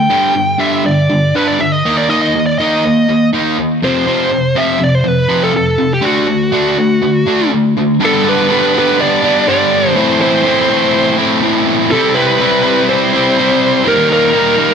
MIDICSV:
0, 0, Header, 1, 3, 480
1, 0, Start_track
1, 0, Key_signature, 1, "major"
1, 0, Tempo, 493421
1, 112, Time_signature, 4, 2, 24, 8
1, 7311, Tempo, 487409
1, 14426, End_track
2, 0, Start_track
2, 0, Title_t, "Lead electric guitar"
2, 0, Program_c, 0, 29
2, 0, Note_on_c, 0, 79, 86
2, 547, Note_off_c, 0, 79, 0
2, 588, Note_on_c, 0, 76, 83
2, 833, Note_off_c, 0, 76, 0
2, 837, Note_on_c, 0, 74, 85
2, 1318, Note_on_c, 0, 71, 80
2, 1330, Note_off_c, 0, 74, 0
2, 1428, Note_off_c, 0, 71, 0
2, 1434, Note_on_c, 0, 74, 83
2, 1559, Note_off_c, 0, 74, 0
2, 1559, Note_on_c, 0, 76, 91
2, 1673, Note_off_c, 0, 76, 0
2, 1673, Note_on_c, 0, 75, 78
2, 1916, Note_off_c, 0, 75, 0
2, 1920, Note_on_c, 0, 74, 79
2, 2038, Note_off_c, 0, 74, 0
2, 2038, Note_on_c, 0, 75, 83
2, 2143, Note_off_c, 0, 75, 0
2, 2155, Note_on_c, 0, 75, 77
2, 2393, Note_off_c, 0, 75, 0
2, 2396, Note_on_c, 0, 74, 78
2, 2508, Note_off_c, 0, 74, 0
2, 2513, Note_on_c, 0, 75, 78
2, 3197, Note_off_c, 0, 75, 0
2, 3741, Note_on_c, 0, 72, 90
2, 4453, Note_on_c, 0, 76, 88
2, 4471, Note_off_c, 0, 72, 0
2, 4692, Note_off_c, 0, 76, 0
2, 4704, Note_on_c, 0, 74, 86
2, 4813, Note_off_c, 0, 74, 0
2, 4813, Note_on_c, 0, 72, 86
2, 4943, Note_off_c, 0, 72, 0
2, 4943, Note_on_c, 0, 71, 89
2, 5288, Note_on_c, 0, 69, 78
2, 5290, Note_off_c, 0, 71, 0
2, 5395, Note_off_c, 0, 69, 0
2, 5416, Note_on_c, 0, 69, 93
2, 5773, Note_off_c, 0, 69, 0
2, 5777, Note_on_c, 0, 67, 72
2, 5890, Note_off_c, 0, 67, 0
2, 5896, Note_on_c, 0, 66, 73
2, 7282, Note_off_c, 0, 66, 0
2, 7839, Note_on_c, 0, 69, 90
2, 8064, Note_off_c, 0, 69, 0
2, 8072, Note_on_c, 0, 71, 100
2, 8549, Note_off_c, 0, 71, 0
2, 8563, Note_on_c, 0, 71, 95
2, 8765, Note_off_c, 0, 71, 0
2, 8786, Note_on_c, 0, 74, 113
2, 9220, Note_off_c, 0, 74, 0
2, 9254, Note_on_c, 0, 74, 109
2, 9724, Note_off_c, 0, 74, 0
2, 9728, Note_on_c, 0, 72, 99
2, 9947, Note_off_c, 0, 72, 0
2, 9967, Note_on_c, 0, 72, 89
2, 10883, Note_off_c, 0, 72, 0
2, 11644, Note_on_c, 0, 69, 95
2, 11874, Note_on_c, 0, 71, 108
2, 11887, Note_off_c, 0, 69, 0
2, 12555, Note_off_c, 0, 71, 0
2, 12609, Note_on_c, 0, 72, 112
2, 13575, Note_off_c, 0, 72, 0
2, 13579, Note_on_c, 0, 70, 96
2, 13809, Note_off_c, 0, 70, 0
2, 13821, Note_on_c, 0, 70, 91
2, 14426, Note_off_c, 0, 70, 0
2, 14426, End_track
3, 0, Start_track
3, 0, Title_t, "Distorted electric guitar"
3, 0, Program_c, 1, 30
3, 93, Note_on_c, 1, 50, 74
3, 94, Note_on_c, 1, 43, 77
3, 98, Note_on_c, 1, 55, 80
3, 320, Note_off_c, 1, 43, 0
3, 326, Note_off_c, 1, 50, 0
3, 331, Note_off_c, 1, 55, 0
3, 332, Note_on_c, 1, 43, 61
3, 338, Note_on_c, 1, 50, 67
3, 555, Note_off_c, 1, 43, 0
3, 562, Note_off_c, 1, 50, 0
3, 567, Note_on_c, 1, 43, 74
3, 574, Note_on_c, 1, 50, 77
3, 576, Note_on_c, 1, 55, 77
3, 806, Note_off_c, 1, 43, 0
3, 810, Note_off_c, 1, 50, 0
3, 811, Note_off_c, 1, 55, 0
3, 819, Note_on_c, 1, 43, 64
3, 829, Note_on_c, 1, 50, 68
3, 1043, Note_off_c, 1, 43, 0
3, 1048, Note_off_c, 1, 50, 0
3, 1066, Note_on_c, 1, 43, 63
3, 1069, Note_on_c, 1, 50, 65
3, 1287, Note_off_c, 1, 43, 0
3, 1288, Note_off_c, 1, 50, 0
3, 1312, Note_on_c, 1, 43, 73
3, 1316, Note_on_c, 1, 50, 77
3, 1326, Note_on_c, 1, 55, 80
3, 1539, Note_off_c, 1, 43, 0
3, 1541, Note_off_c, 1, 50, 0
3, 1546, Note_off_c, 1, 55, 0
3, 1554, Note_on_c, 1, 43, 60
3, 1559, Note_on_c, 1, 50, 68
3, 1771, Note_off_c, 1, 43, 0
3, 1773, Note_off_c, 1, 50, 0
3, 1804, Note_on_c, 1, 51, 74
3, 1805, Note_on_c, 1, 58, 79
3, 1809, Note_on_c, 1, 63, 80
3, 2020, Note_off_c, 1, 51, 0
3, 2026, Note_off_c, 1, 58, 0
3, 2028, Note_off_c, 1, 63, 0
3, 2032, Note_on_c, 1, 51, 73
3, 2038, Note_on_c, 1, 63, 79
3, 2039, Note_on_c, 1, 58, 80
3, 2260, Note_off_c, 1, 51, 0
3, 2263, Note_off_c, 1, 58, 0
3, 2263, Note_off_c, 1, 63, 0
3, 2288, Note_on_c, 1, 51, 57
3, 2292, Note_on_c, 1, 58, 60
3, 2499, Note_off_c, 1, 51, 0
3, 2500, Note_off_c, 1, 58, 0
3, 2528, Note_on_c, 1, 51, 77
3, 2532, Note_on_c, 1, 58, 75
3, 2547, Note_on_c, 1, 63, 85
3, 2748, Note_off_c, 1, 51, 0
3, 2750, Note_off_c, 1, 58, 0
3, 2758, Note_off_c, 1, 63, 0
3, 2779, Note_on_c, 1, 51, 59
3, 2780, Note_on_c, 1, 58, 70
3, 2984, Note_off_c, 1, 51, 0
3, 2984, Note_off_c, 1, 58, 0
3, 3006, Note_on_c, 1, 51, 63
3, 3011, Note_on_c, 1, 58, 65
3, 3218, Note_off_c, 1, 51, 0
3, 3220, Note_off_c, 1, 58, 0
3, 3242, Note_on_c, 1, 51, 77
3, 3253, Note_on_c, 1, 58, 83
3, 3258, Note_on_c, 1, 63, 89
3, 3465, Note_off_c, 1, 51, 0
3, 3471, Note_off_c, 1, 58, 0
3, 3473, Note_off_c, 1, 63, 0
3, 3490, Note_on_c, 1, 51, 63
3, 3491, Note_on_c, 1, 58, 70
3, 3700, Note_off_c, 1, 51, 0
3, 3701, Note_off_c, 1, 58, 0
3, 3720, Note_on_c, 1, 41, 78
3, 3731, Note_on_c, 1, 48, 91
3, 3731, Note_on_c, 1, 53, 80
3, 3935, Note_off_c, 1, 41, 0
3, 3947, Note_off_c, 1, 48, 0
3, 3947, Note_on_c, 1, 41, 76
3, 3950, Note_off_c, 1, 53, 0
3, 3959, Note_on_c, 1, 48, 85
3, 3962, Note_on_c, 1, 53, 93
3, 4178, Note_off_c, 1, 41, 0
3, 4184, Note_off_c, 1, 48, 0
3, 4185, Note_off_c, 1, 53, 0
3, 4199, Note_on_c, 1, 41, 55
3, 4206, Note_on_c, 1, 48, 68
3, 4415, Note_off_c, 1, 41, 0
3, 4418, Note_off_c, 1, 48, 0
3, 4429, Note_on_c, 1, 41, 77
3, 4438, Note_on_c, 1, 53, 87
3, 4439, Note_on_c, 1, 48, 88
3, 4649, Note_off_c, 1, 41, 0
3, 4658, Note_off_c, 1, 48, 0
3, 4661, Note_on_c, 1, 41, 59
3, 4664, Note_off_c, 1, 53, 0
3, 4670, Note_on_c, 1, 48, 67
3, 4885, Note_off_c, 1, 41, 0
3, 4890, Note_off_c, 1, 48, 0
3, 4904, Note_on_c, 1, 48, 65
3, 4906, Note_on_c, 1, 41, 69
3, 5127, Note_off_c, 1, 48, 0
3, 5128, Note_off_c, 1, 41, 0
3, 5144, Note_on_c, 1, 48, 92
3, 5146, Note_on_c, 1, 41, 83
3, 5152, Note_on_c, 1, 53, 97
3, 5370, Note_off_c, 1, 41, 0
3, 5373, Note_off_c, 1, 48, 0
3, 5380, Note_off_c, 1, 53, 0
3, 5382, Note_on_c, 1, 41, 65
3, 5385, Note_on_c, 1, 48, 75
3, 5605, Note_off_c, 1, 41, 0
3, 5607, Note_off_c, 1, 48, 0
3, 5627, Note_on_c, 1, 41, 57
3, 5630, Note_on_c, 1, 48, 73
3, 5848, Note_off_c, 1, 41, 0
3, 5849, Note_off_c, 1, 48, 0
3, 5852, Note_on_c, 1, 57, 79
3, 5855, Note_on_c, 1, 50, 82
3, 5863, Note_on_c, 1, 62, 92
3, 6090, Note_off_c, 1, 57, 0
3, 6091, Note_off_c, 1, 50, 0
3, 6095, Note_off_c, 1, 62, 0
3, 6107, Note_on_c, 1, 50, 65
3, 6112, Note_on_c, 1, 57, 62
3, 6327, Note_off_c, 1, 50, 0
3, 6329, Note_off_c, 1, 57, 0
3, 6344, Note_on_c, 1, 50, 83
3, 6346, Note_on_c, 1, 57, 79
3, 6355, Note_on_c, 1, 62, 90
3, 6575, Note_off_c, 1, 50, 0
3, 6576, Note_off_c, 1, 57, 0
3, 6580, Note_off_c, 1, 62, 0
3, 6595, Note_on_c, 1, 50, 59
3, 6598, Note_on_c, 1, 57, 74
3, 6810, Note_off_c, 1, 50, 0
3, 6812, Note_off_c, 1, 57, 0
3, 6827, Note_on_c, 1, 57, 73
3, 6829, Note_on_c, 1, 50, 66
3, 7045, Note_off_c, 1, 57, 0
3, 7046, Note_off_c, 1, 50, 0
3, 7063, Note_on_c, 1, 50, 78
3, 7073, Note_on_c, 1, 62, 91
3, 7075, Note_on_c, 1, 57, 92
3, 7292, Note_off_c, 1, 50, 0
3, 7297, Note_off_c, 1, 62, 0
3, 7298, Note_off_c, 1, 57, 0
3, 7322, Note_on_c, 1, 50, 69
3, 7328, Note_on_c, 1, 57, 74
3, 7534, Note_off_c, 1, 50, 0
3, 7537, Note_off_c, 1, 57, 0
3, 7560, Note_on_c, 1, 50, 65
3, 7569, Note_on_c, 1, 57, 70
3, 7774, Note_off_c, 1, 50, 0
3, 7778, Note_off_c, 1, 57, 0
3, 7788, Note_on_c, 1, 43, 100
3, 7796, Note_on_c, 1, 50, 105
3, 7808, Note_on_c, 1, 55, 100
3, 7809, Note_on_c, 1, 59, 105
3, 7822, Note_on_c, 1, 62, 108
3, 8016, Note_off_c, 1, 62, 0
3, 8028, Note_off_c, 1, 59, 0
3, 8028, Note_on_c, 1, 62, 68
3, 8040, Note_on_c, 1, 59, 72
3, 8045, Note_off_c, 1, 55, 0
3, 8057, Note_on_c, 1, 55, 62
3, 8256, Note_off_c, 1, 50, 0
3, 8268, Note_on_c, 1, 50, 77
3, 8270, Note_off_c, 1, 55, 0
3, 8273, Note_off_c, 1, 43, 0
3, 8277, Note_off_c, 1, 59, 0
3, 8281, Note_off_c, 1, 62, 0
3, 8282, Note_on_c, 1, 55, 84
3, 8288, Note_on_c, 1, 59, 87
3, 8293, Note_on_c, 1, 62, 84
3, 8498, Note_off_c, 1, 62, 0
3, 8510, Note_on_c, 1, 62, 79
3, 8514, Note_off_c, 1, 59, 0
3, 8526, Note_on_c, 1, 59, 72
3, 8529, Note_off_c, 1, 55, 0
3, 8541, Note_on_c, 1, 55, 65
3, 8754, Note_off_c, 1, 50, 0
3, 8979, Note_off_c, 1, 62, 0
3, 8991, Note_on_c, 1, 62, 74
3, 8996, Note_off_c, 1, 59, 0
3, 9003, Note_off_c, 1, 55, 0
3, 9007, Note_on_c, 1, 59, 75
3, 9015, Note_on_c, 1, 55, 61
3, 9236, Note_off_c, 1, 55, 0
3, 9239, Note_on_c, 1, 43, 100
3, 9240, Note_on_c, 1, 50, 100
3, 9246, Note_off_c, 1, 59, 0
3, 9248, Note_off_c, 1, 62, 0
3, 9248, Note_on_c, 1, 55, 105
3, 9258, Note_on_c, 1, 59, 98
3, 9260, Note_on_c, 1, 62, 111
3, 9704, Note_off_c, 1, 43, 0
3, 9705, Note_off_c, 1, 50, 0
3, 9709, Note_off_c, 1, 55, 0
3, 9714, Note_off_c, 1, 59, 0
3, 9714, Note_on_c, 1, 45, 89
3, 9715, Note_off_c, 1, 62, 0
3, 9722, Note_on_c, 1, 52, 98
3, 9729, Note_on_c, 1, 57, 94
3, 9736, Note_on_c, 1, 60, 106
3, 9743, Note_on_c, 1, 64, 101
3, 9956, Note_off_c, 1, 64, 0
3, 9960, Note_on_c, 1, 64, 79
3, 9971, Note_off_c, 1, 60, 0
3, 9975, Note_on_c, 1, 60, 74
3, 9977, Note_off_c, 1, 57, 0
3, 9988, Note_on_c, 1, 57, 63
3, 10189, Note_off_c, 1, 52, 0
3, 10189, Note_off_c, 1, 57, 0
3, 10193, Note_on_c, 1, 52, 78
3, 10196, Note_off_c, 1, 45, 0
3, 10201, Note_on_c, 1, 57, 85
3, 10215, Note_off_c, 1, 60, 0
3, 10219, Note_on_c, 1, 60, 84
3, 10223, Note_off_c, 1, 64, 0
3, 10227, Note_on_c, 1, 64, 84
3, 10430, Note_off_c, 1, 64, 0
3, 10434, Note_on_c, 1, 64, 76
3, 10442, Note_off_c, 1, 60, 0
3, 10446, Note_off_c, 1, 57, 0
3, 10446, Note_on_c, 1, 60, 67
3, 10458, Note_on_c, 1, 57, 70
3, 10904, Note_off_c, 1, 64, 0
3, 10916, Note_on_c, 1, 64, 74
3, 10921, Note_off_c, 1, 60, 0
3, 10925, Note_off_c, 1, 57, 0
3, 10932, Note_on_c, 1, 60, 68
3, 10937, Note_on_c, 1, 57, 69
3, 11149, Note_off_c, 1, 57, 0
3, 11152, Note_on_c, 1, 45, 106
3, 11156, Note_off_c, 1, 52, 0
3, 11160, Note_on_c, 1, 52, 100
3, 11160, Note_on_c, 1, 57, 95
3, 11161, Note_off_c, 1, 60, 0
3, 11166, Note_off_c, 1, 64, 0
3, 11173, Note_on_c, 1, 60, 94
3, 11178, Note_on_c, 1, 64, 113
3, 11620, Note_off_c, 1, 45, 0
3, 11624, Note_off_c, 1, 52, 0
3, 11624, Note_off_c, 1, 57, 0
3, 11630, Note_off_c, 1, 60, 0
3, 11633, Note_off_c, 1, 64, 0
3, 11644, Note_on_c, 1, 48, 89
3, 11659, Note_on_c, 1, 55, 101
3, 11662, Note_on_c, 1, 60, 104
3, 11675, Note_on_c, 1, 64, 100
3, 11865, Note_off_c, 1, 64, 0
3, 11877, Note_on_c, 1, 64, 78
3, 11883, Note_off_c, 1, 60, 0
3, 11895, Note_on_c, 1, 60, 71
3, 11906, Note_off_c, 1, 55, 0
3, 11910, Note_on_c, 1, 55, 65
3, 12102, Note_off_c, 1, 48, 0
3, 12113, Note_on_c, 1, 48, 73
3, 12127, Note_off_c, 1, 60, 0
3, 12129, Note_off_c, 1, 55, 0
3, 12132, Note_on_c, 1, 55, 89
3, 12133, Note_off_c, 1, 64, 0
3, 12139, Note_on_c, 1, 60, 84
3, 12145, Note_on_c, 1, 64, 78
3, 12342, Note_off_c, 1, 64, 0
3, 12354, Note_on_c, 1, 64, 77
3, 12363, Note_off_c, 1, 60, 0
3, 12375, Note_on_c, 1, 60, 65
3, 12389, Note_off_c, 1, 55, 0
3, 12393, Note_on_c, 1, 55, 66
3, 12594, Note_off_c, 1, 48, 0
3, 12830, Note_off_c, 1, 64, 0
3, 12842, Note_on_c, 1, 64, 78
3, 12854, Note_off_c, 1, 60, 0
3, 12865, Note_on_c, 1, 60, 76
3, 12867, Note_off_c, 1, 55, 0
3, 12871, Note_on_c, 1, 55, 61
3, 13077, Note_on_c, 1, 48, 99
3, 13089, Note_off_c, 1, 55, 0
3, 13093, Note_on_c, 1, 55, 94
3, 13096, Note_off_c, 1, 60, 0
3, 13098, Note_off_c, 1, 64, 0
3, 13108, Note_on_c, 1, 60, 110
3, 13110, Note_on_c, 1, 64, 104
3, 13539, Note_off_c, 1, 48, 0
3, 13543, Note_on_c, 1, 51, 100
3, 13549, Note_off_c, 1, 55, 0
3, 13553, Note_on_c, 1, 55, 98
3, 13555, Note_off_c, 1, 60, 0
3, 13556, Note_off_c, 1, 64, 0
3, 13560, Note_on_c, 1, 58, 91
3, 13574, Note_on_c, 1, 63, 116
3, 13786, Note_off_c, 1, 63, 0
3, 13798, Note_on_c, 1, 63, 82
3, 13802, Note_off_c, 1, 58, 0
3, 13814, Note_on_c, 1, 58, 68
3, 13819, Note_off_c, 1, 55, 0
3, 13823, Note_on_c, 1, 55, 60
3, 14011, Note_off_c, 1, 51, 0
3, 14023, Note_on_c, 1, 51, 79
3, 14028, Note_off_c, 1, 55, 0
3, 14032, Note_off_c, 1, 58, 0
3, 14032, Note_on_c, 1, 55, 86
3, 14044, Note_off_c, 1, 63, 0
3, 14044, Note_on_c, 1, 58, 79
3, 14056, Note_on_c, 1, 63, 87
3, 14252, Note_off_c, 1, 63, 0
3, 14264, Note_on_c, 1, 63, 77
3, 14270, Note_off_c, 1, 58, 0
3, 14282, Note_on_c, 1, 58, 64
3, 14292, Note_off_c, 1, 55, 0
3, 14296, Note_on_c, 1, 55, 70
3, 14426, Note_off_c, 1, 51, 0
3, 14426, Note_off_c, 1, 55, 0
3, 14426, Note_off_c, 1, 58, 0
3, 14426, Note_off_c, 1, 63, 0
3, 14426, End_track
0, 0, End_of_file